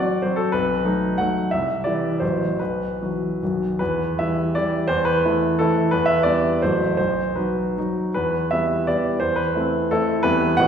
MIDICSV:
0, 0, Header, 1, 2, 480
1, 0, Start_track
1, 0, Key_signature, 1, "minor"
1, 0, Tempo, 312663
1, 829, Time_signature, 3, 2, 24, 8
1, 1313, Tempo, 332410
1, 2753, Tempo, 372439
1, 3713, Tempo, 395257
1, 5633, Tempo, 343249
1, 8513, Tempo, 379747
1, 11393, Tempo, 344630
1, 14402, End_track
2, 0, Start_track
2, 0, Title_t, "Grand piano"
2, 0, Program_c, 0, 0
2, 0, Note_on_c, 0, 54, 39
2, 0, Note_on_c, 0, 60, 39
2, 0, Note_on_c, 0, 66, 43
2, 0, Note_on_c, 0, 74, 77
2, 297, Note_off_c, 0, 54, 0
2, 303, Note_off_c, 0, 60, 0
2, 307, Note_off_c, 0, 66, 0
2, 339, Note_off_c, 0, 74, 0
2, 340, Note_on_c, 0, 72, 61
2, 374, Note_on_c, 0, 54, 39
2, 380, Note_on_c, 0, 60, 37
2, 388, Note_on_c, 0, 66, 43
2, 556, Note_on_c, 0, 69, 71
2, 588, Note_off_c, 0, 72, 0
2, 789, Note_off_c, 0, 54, 0
2, 792, Note_off_c, 0, 60, 0
2, 797, Note_off_c, 0, 66, 0
2, 802, Note_on_c, 0, 71, 82
2, 808, Note_off_c, 0, 69, 0
2, 820, Note_on_c, 0, 35, 51
2, 1085, Control_c, 0, 64, 127
2, 1294, Note_off_c, 0, 35, 0
2, 1302, Note_on_c, 0, 54, 41
2, 1306, Note_on_c, 0, 57, 40
2, 1311, Note_on_c, 0, 63, 43
2, 1744, Note_off_c, 0, 54, 0
2, 1746, Note_off_c, 0, 57, 0
2, 1748, Note_off_c, 0, 63, 0
2, 1779, Note_on_c, 0, 78, 76
2, 1784, Note_off_c, 0, 71, 0
2, 1807, Note_on_c, 0, 54, 38
2, 1808, Note_on_c, 0, 57, 35
2, 1810, Control_c, 0, 64, 0
2, 1813, Note_on_c, 0, 63, 38
2, 2219, Note_off_c, 0, 54, 0
2, 2220, Note_off_c, 0, 57, 0
2, 2222, Note_off_c, 0, 63, 0
2, 2251, Note_off_c, 0, 78, 0
2, 2261, Note_on_c, 0, 76, 76
2, 2286, Note_on_c, 0, 36, 47
2, 2491, Control_c, 0, 64, 127
2, 2734, Note_on_c, 0, 74, 63
2, 2751, Note_off_c, 0, 36, 0
2, 2752, Note_off_c, 0, 76, 0
2, 2756, Note_on_c, 0, 55, 35
2, 2764, Note_on_c, 0, 52, 35
2, 2773, Note_on_c, 0, 64, 37
2, 3182, Note_off_c, 0, 55, 0
2, 3186, Note_off_c, 0, 52, 0
2, 3191, Note_off_c, 0, 64, 0
2, 3198, Note_on_c, 0, 72, 59
2, 3215, Note_on_c, 0, 33, 42
2, 3219, Note_off_c, 0, 74, 0
2, 3220, Note_on_c, 0, 52, 31
2, 3224, Note_on_c, 0, 54, 32
2, 3230, Note_on_c, 0, 66, 31
2, 3244, Control_c, 0, 64, 0
2, 3472, Control_c, 0, 64, 127
2, 3660, Note_off_c, 0, 52, 0
2, 3662, Note_off_c, 0, 54, 0
2, 3666, Note_off_c, 0, 66, 0
2, 3692, Note_off_c, 0, 33, 0
2, 3698, Note_off_c, 0, 72, 0
2, 3710, Note_on_c, 0, 71, 53
2, 3727, Control_c, 0, 64, 0
2, 3727, Note_on_c, 0, 35, 36
2, 3960, Control_c, 0, 64, 127
2, 4194, Note_off_c, 0, 35, 0
2, 4222, Note_on_c, 0, 52, 28
2, 4231, Note_on_c, 0, 54, 29
2, 4235, Note_on_c, 0, 66, 33
2, 4663, Note_off_c, 0, 52, 0
2, 4668, Note_off_c, 0, 54, 0
2, 4670, Note_off_c, 0, 66, 0
2, 4719, Control_c, 0, 64, 0
2, 4722, Note_on_c, 0, 35, 35
2, 4725, Note_on_c, 0, 51, 24
2, 4734, Note_on_c, 0, 54, 26
2, 4738, Note_on_c, 0, 66, 26
2, 4939, Control_c, 0, 64, 127
2, 4942, Note_off_c, 0, 71, 0
2, 5141, Note_off_c, 0, 51, 0
2, 5145, Note_off_c, 0, 54, 0
2, 5148, Note_off_c, 0, 66, 0
2, 5164, Note_on_c, 0, 71, 68
2, 5171, Note_off_c, 0, 35, 0
2, 5182, Note_on_c, 0, 40, 47
2, 5191, Control_c, 0, 64, 0
2, 5409, Control_c, 0, 64, 127
2, 5622, Note_off_c, 0, 40, 0
2, 5627, Note_off_c, 0, 71, 0
2, 5647, Note_on_c, 0, 76, 74
2, 5659, Note_on_c, 0, 52, 36
2, 5669, Note_on_c, 0, 64, 38
2, 5672, Note_on_c, 0, 55, 33
2, 6104, Note_off_c, 0, 52, 0
2, 6110, Note_off_c, 0, 64, 0
2, 6111, Note_off_c, 0, 55, 0
2, 6147, Note_off_c, 0, 76, 0
2, 6152, Note_on_c, 0, 74, 76
2, 6158, Control_c, 0, 64, 0
2, 6176, Note_on_c, 0, 64, 45
2, 6177, Note_on_c, 0, 52, 44
2, 6182, Note_on_c, 0, 55, 44
2, 6580, Note_off_c, 0, 52, 0
2, 6580, Note_off_c, 0, 64, 0
2, 6583, Note_off_c, 0, 55, 0
2, 6608, Note_on_c, 0, 72, 90
2, 6613, Note_off_c, 0, 74, 0
2, 6630, Note_on_c, 0, 40, 58
2, 6845, Note_off_c, 0, 72, 0
2, 6851, Note_on_c, 0, 71, 83
2, 6906, Control_c, 0, 64, 127
2, 7094, Note_off_c, 0, 40, 0
2, 7131, Note_on_c, 0, 52, 45
2, 7136, Note_on_c, 0, 57, 41
2, 7142, Note_on_c, 0, 64, 47
2, 7555, Note_off_c, 0, 52, 0
2, 7557, Note_off_c, 0, 57, 0
2, 7561, Note_off_c, 0, 64, 0
2, 7588, Note_off_c, 0, 71, 0
2, 7595, Control_c, 0, 64, 0
2, 7603, Note_on_c, 0, 69, 77
2, 7619, Note_on_c, 0, 52, 51
2, 7632, Note_on_c, 0, 57, 52
2, 7638, Note_on_c, 0, 64, 52
2, 8008, Note_off_c, 0, 52, 0
2, 8015, Note_off_c, 0, 57, 0
2, 8018, Note_off_c, 0, 64, 0
2, 8043, Note_off_c, 0, 69, 0
2, 8057, Note_on_c, 0, 71, 87
2, 8086, Note_on_c, 0, 40, 53
2, 8260, Note_on_c, 0, 76, 86
2, 8275, Note_off_c, 0, 71, 0
2, 8318, Control_c, 0, 64, 127
2, 8505, Note_on_c, 0, 74, 82
2, 8509, Note_off_c, 0, 76, 0
2, 8515, Note_on_c, 0, 55, 38
2, 8523, Note_off_c, 0, 40, 0
2, 8527, Note_on_c, 0, 64, 43
2, 8531, Note_on_c, 0, 59, 41
2, 8940, Note_off_c, 0, 55, 0
2, 8947, Note_off_c, 0, 64, 0
2, 8949, Note_off_c, 0, 59, 0
2, 8983, Note_off_c, 0, 74, 0
2, 8997, Note_on_c, 0, 72, 69
2, 9006, Control_c, 0, 64, 0
2, 9016, Note_on_c, 0, 33, 47
2, 9021, Note_on_c, 0, 54, 35
2, 9026, Note_on_c, 0, 57, 35
2, 9029, Note_on_c, 0, 66, 34
2, 9223, Control_c, 0, 64, 127
2, 9422, Note_off_c, 0, 72, 0
2, 9424, Note_off_c, 0, 54, 0
2, 9427, Note_off_c, 0, 57, 0
2, 9429, Note_off_c, 0, 66, 0
2, 9441, Note_on_c, 0, 72, 70
2, 9453, Note_off_c, 0, 33, 0
2, 9465, Note_on_c, 0, 35, 42
2, 9467, Control_c, 0, 64, 0
2, 9701, Control_c, 0, 64, 127
2, 9927, Note_on_c, 0, 71, 52
2, 9931, Note_off_c, 0, 35, 0
2, 9934, Note_off_c, 0, 72, 0
2, 9945, Note_on_c, 0, 54, 32
2, 9946, Note_on_c, 0, 63, 32
2, 9961, Note_on_c, 0, 66, 35
2, 10397, Note_off_c, 0, 54, 0
2, 10398, Note_off_c, 0, 63, 0
2, 10406, Note_off_c, 0, 66, 0
2, 10459, Note_on_c, 0, 63, 35
2, 10461, Note_on_c, 0, 54, 38
2, 10463, Control_c, 0, 64, 0
2, 10466, Note_on_c, 0, 66, 40
2, 10686, Note_off_c, 0, 71, 0
2, 10888, Note_off_c, 0, 63, 0
2, 10889, Note_off_c, 0, 54, 0
2, 10892, Note_off_c, 0, 66, 0
2, 10923, Note_on_c, 0, 71, 70
2, 10939, Note_on_c, 0, 40, 46
2, 11156, Control_c, 0, 64, 127
2, 11381, Note_on_c, 0, 76, 77
2, 11384, Note_off_c, 0, 40, 0
2, 11390, Note_off_c, 0, 71, 0
2, 11395, Note_on_c, 0, 55, 36
2, 11396, Note_on_c, 0, 59, 38
2, 11405, Note_on_c, 0, 64, 40
2, 11830, Note_off_c, 0, 55, 0
2, 11831, Note_off_c, 0, 59, 0
2, 11836, Note_off_c, 0, 64, 0
2, 11871, Note_off_c, 0, 76, 0
2, 11888, Note_on_c, 0, 74, 69
2, 11893, Control_c, 0, 64, 0
2, 11898, Note_on_c, 0, 59, 41
2, 11900, Note_on_c, 0, 55, 41
2, 11906, Note_on_c, 0, 64, 46
2, 12301, Note_off_c, 0, 59, 0
2, 12302, Note_off_c, 0, 55, 0
2, 12306, Note_off_c, 0, 64, 0
2, 12341, Note_off_c, 0, 74, 0
2, 12341, Note_on_c, 0, 72, 79
2, 12353, Note_on_c, 0, 40, 49
2, 12567, Note_on_c, 0, 71, 74
2, 12572, Note_off_c, 0, 72, 0
2, 12618, Control_c, 0, 64, 127
2, 12815, Note_off_c, 0, 40, 0
2, 12840, Note_on_c, 0, 57, 37
2, 12842, Note_on_c, 0, 60, 39
2, 12854, Note_on_c, 0, 64, 43
2, 13277, Note_off_c, 0, 57, 0
2, 13278, Note_off_c, 0, 60, 0
2, 13285, Note_off_c, 0, 64, 0
2, 13315, Note_off_c, 0, 71, 0
2, 13334, Control_c, 0, 64, 0
2, 13335, Note_on_c, 0, 69, 76
2, 13341, Note_on_c, 0, 57, 48
2, 13356, Note_on_c, 0, 64, 54
2, 13359, Note_on_c, 0, 60, 47
2, 13743, Note_off_c, 0, 57, 0
2, 13751, Note_off_c, 0, 64, 0
2, 13753, Note_off_c, 0, 60, 0
2, 13777, Note_on_c, 0, 71, 88
2, 13784, Note_off_c, 0, 69, 0
2, 13789, Note_on_c, 0, 40, 60
2, 13790, Note_on_c, 0, 55, 44
2, 13798, Note_on_c, 0, 59, 43
2, 13808, Note_on_c, 0, 64, 43
2, 14003, Control_c, 0, 64, 127
2, 14219, Note_off_c, 0, 55, 0
2, 14223, Note_off_c, 0, 59, 0
2, 14229, Note_off_c, 0, 64, 0
2, 14252, Note_off_c, 0, 40, 0
2, 14252, Note_on_c, 0, 78, 103
2, 14260, Note_off_c, 0, 71, 0
2, 14281, Control_c, 0, 64, 0
2, 14283, Note_on_c, 0, 33, 64
2, 14283, Note_on_c, 0, 57, 44
2, 14292, Note_on_c, 0, 60, 44
2, 14292, Note_on_c, 0, 66, 44
2, 14402, Note_off_c, 0, 33, 0
2, 14402, Note_off_c, 0, 57, 0
2, 14402, Note_off_c, 0, 60, 0
2, 14402, Note_off_c, 0, 66, 0
2, 14402, Note_off_c, 0, 78, 0
2, 14402, End_track
0, 0, End_of_file